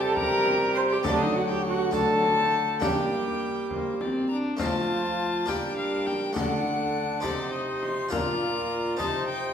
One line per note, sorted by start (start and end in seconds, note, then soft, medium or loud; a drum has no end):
0.00 1.01 C3 medium
0.00 1.01 G3 medium
0.00 1.00 C4 medium
0.00 1.00 G4 medium
0.00 0.15 A5 medium
0.05 0.17 A4 medium
0.15 0.78 A#4 loud
0.15 0.73 A#5 loud
0.15 frame drum medium
0.46 frame drum medium
0.75 0.94 C5 loud
0.75 0.81 C6 medium
0.90 1.06 G4 medium
0.90 1.04 G5 medium
1.03 2.79 D3 medium
1.03 2.84 D3 medium
1.03 1.89 F#3 medium
1.03 1.90 A3 medium
1.03 1.90 D4 medium
1.03 1.18 D5 medium
1.03 frame drum medium
1.08 1.24 D4 loud
1.19 1.35 D#4 medium
1.19 1.35 D#5 medium
1.34 1.41 F#4 medium
1.34 1.50 F#5 medium
1.48 1.64 G5 medium
1.52 1.65 G4 medium
1.63 1.94 F#5 medium
1.68 1.94 F#4 medium
1.91 2.40 F#3 medium
1.91 2.79 A3 medium
1.91 2.79 D4 medium
1.91 2.82 A4 loud
1.91 2.81 A5 medium
1.91 frame drum medium
2.22 frame drum soft
2.38 2.85 A3 medium
2.80 4.31 G3 medium
2.80 4.27 G3 medium
2.80 4.55 A#3 soft
2.80 3.66 A#3 medium
2.80 4.56 D4 soft
2.80 3.70 G4 medium
2.80 3.69 G5 medium
2.80 frame drum medium
3.71 3.99 A#3 medium
3.71 4.03 C5 medium
3.71 frame drum soft
4.01 4.31 C4 medium
4.01 4.28 D5 medium
4.01 frame drum soft
4.29 4.60 D4 medium
4.29 4.37 A#5 medium
4.57 5.50 F3 medium
4.57 5.45 F3 soft
4.57 5.44 A3 soft
4.57 5.45 C4 soft
4.57 5.46 F4 soft
4.57 5.50 A5 medium
4.57 frame drum medium
4.62 5.51 F4 medium
4.62 5.51 C5 medium
5.46 6.36 G3 medium
5.46 6.33 G3 soft
5.46 6.33 A#3 soft
5.46 6.33 D4 soft
5.46 6.37 D4 medium
5.46 5.77 G5 medium
5.46 frame drum soft
5.50 6.38 A#4 medium
5.77 6.08 F5 medium
6.07 6.35 G5 medium
6.07 frame drum soft
6.33 7.20 A3 soft
6.33 7.21 D4 soft
6.33 7.22 F#5 medium
6.33 frame drum medium
6.37 7.23 D3 medium
6.37 7.21 D3 medium
6.37 7.27 D4 medium
6.37 7.27 A4 medium
7.20 8.08 C3 soft
7.20 8.08 C4 soft
7.20 8.08 D#4 soft
7.20 8.09 G4 soft
7.20 7.54 D5 medium
7.20 frame drum soft
7.25 8.11 C3 medium
7.25 8.13 D#4 medium
7.25 8.13 C5 medium
7.52 7.84 D#5 medium
7.83 8.12 C6 medium
7.83 frame drum soft
8.09 8.96 A#2 soft
8.09 8.96 D4 soft
8.09 8.96 F4 soft
8.09 8.97 A#4 soft
8.09 8.98 A#5 medium
8.09 frame drum medium
8.13 9.02 A#2 medium
8.13 8.99 F4 medium
8.13 9.03 D5 medium
8.97 9.54 C3 medium
8.97 9.54 C3 soft
8.97 9.54 C4 soft
8.97 9.54 D#4 soft
8.97 9.54 D#5 soft
8.97 9.27 A5 medium
8.97 frame drum soft
9.01 9.54 D#4 medium
9.01 9.54 C5 medium
9.28 9.54 G5 medium